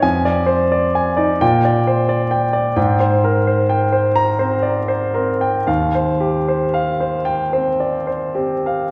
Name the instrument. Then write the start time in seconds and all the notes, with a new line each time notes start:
grand piano
0.02 F2 G#5
0.25 D5
0.46 C5
0.72 D5
0.95 G#5
1.17 D#4 D5
1.41 A#2 G5
1.65 D5
1.87 C5
2.09 D5
2.31 G5
2.53 D5
2.76 G#2 G5
3.00 C5
3.24 A#4
3.47 C5
3.69 G5
3.92 C5
4.16 A#5
4.39 C4 C5
4.63 D5
4.88 C5
5.14 C4 A#4
5.41 G5
5.67 D#2 F5
5.95 C5
6.20 G4
6.48 C5
6.74 F5
7.00 C5
7.25 G5
7.53 C4 C5
7.80 D5
8.07 C5
8.35 C4 G4
8.66 F5